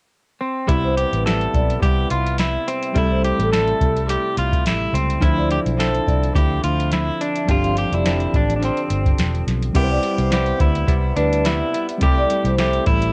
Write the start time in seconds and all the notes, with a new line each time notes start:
0.41 C4
0.67 C2 C3 G3 B3 C4 E4, kick, closed hi-hat
0.72 B4
0.84 C5
0.97 G4, closed hi-hat
1.13 A1 B4, closed hi-hat
1.25 C3 G3 B3 E4 A4, snare, closed hi-hat
1.41 closed hi-hat
1.53 B1 D5, kick, closed hi-hat
1.70 closed hi-hat
1.80 C2 C3 G3 B3 G4, kick, closed hi-hat
1.85 E4
2.10 C2 F4, closed hi-hat
2.26 closed hi-hat
2.38 E4 E5, snare, closed hi-hat
2.68 C4, closed hi-hat
2.83 closed hi-hat
2.93 C2 C3 G3 A3 C4 E4, kick, closed hi-hat
2.98 E4 A4
3.11 C5
3.24 G4, closed hi-hat
3.39 A1 A4, closed hi-hat
3.51 C3 G3 A3 E4 A4, snare, closed hi-hat
3.67 closed hi-hat
3.80 C2 A4, kick, closed hi-hat
3.96 closed hi-hat
4.06 C3 G3 A3, closed hi-hat
4.10 E4 G4
4.37 C2 F4, closed hi-hat
4.52 kick, closed hi-hat
4.64 A1 E4, snare, closed hi-hat
4.93 C#2 C4, closed hi-hat
5.10 closed hi-hat
5.20 D2 D3 F3 C4 D4 E4, kick, closed hi-hat
5.25 C5
5.38 D5
5.51 G4, closed hi-hat
5.66 B1 C5, closed hi-hat
5.77 D3 F3 C4 E4 A4, snare, closed hi-hat
5.95 closed hi-hat
6.07 C2 D5, kick, closed hi-hat
6.24 closed hi-hat
6.33 D2 D3 F3 C4 G4, kick, closed hi-hat
6.38 E4
6.64 D2 F4, closed hi-hat
6.80 closed hi-hat
6.92 E4 E5, snare, closed hi-hat
7.21 D4, closed hi-hat
7.36 closed hi-hat
7.46 G1 G2 D3 F3 C4 D4, kick, closed hi-hat
7.51 F4 G4
7.64 F5, closed hi-hat
7.77 G4, closed hi-hat
7.92 F1 E4 D5, closed hi-hat
8.04 D3 F3 C4 D4, snare, closed hi-hat
8.20 closed hi-hat
8.34 A1 D4 D5, kick, closed hi-hat
8.50 closed hi-hat
8.56 D3 D4
8.62 F3 C4 D4, closed hi-hat
8.77 closed hi-hat
8.90 G1, closed hi-hat
9.05 kick, closed hi-hat
9.18 E1, snare, closed hi-hat
9.35 closed hi-hat
9.47 B1, snare, closed hi-hat
9.62 closed hi-hat
9.72 C2 C3 G3 B3 C4 E4 G4, kick, closed hi-hat, crash
9.77 A#4
9.84 C5
9.91 D5
10.03 G3 B3 E4, closed hi-hat
10.18 C2 C5, closed hi-hat
10.30 C3 G3 B3 E4 G4, snare, closed hi-hat
10.46 closed hi-hat
10.58 D2 G3 B3 E4, kick, closed hi-hat
10.75 closed hi-hat
10.87 C2 C3 G3 B3 E4, kick, closed hi-hat
11.16 D2 G3 B3 D4 E4 B4, closed hi-hat
11.33 closed hi-hat
11.44 C3 G3 B3 E4 E5, snare, closed hi-hat
11.73 G3 B3 E4, closed hi-hat
11.89 closed hi-hat
11.98 C2 C3 G3 C4 E4, kick, closed hi-hat
12.02 G3 A3 E4 G4 A4
12.18 D5
12.30 G3 A3 E4, closed hi-hat
12.44 C2 C5, closed hi-hat
12.58 C3 G3 A3 E4 G4, snare, closed hi-hat
12.73 closed hi-hat
12.86 A1 G3 A3 E4, kick, closed hi-hat
13.02 closed hi-hat